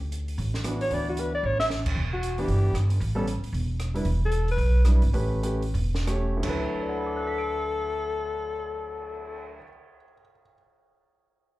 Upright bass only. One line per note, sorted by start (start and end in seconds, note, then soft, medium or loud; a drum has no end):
0.00 0.36 D2 medium
0.38 0.88 A1 medium
0.91 1.40 D2 medium
1.43 1.93 A1 medium
1.96 2.45 E1 medium
2.48 2.72 G1 medium
2.74 2.98 G1 medium
3.00 3.39 A1 medium
3.42 muted upright bass stroke soft
3.53 4.02 E1 medium
4.05 4.55 E1 medium
4.58 4.99 B1 medium
5.02 5.13 G#1 medium
5.13 5.71 A1 medium
5.74 6.40 E1 medium
6.44 9.58 D2 medium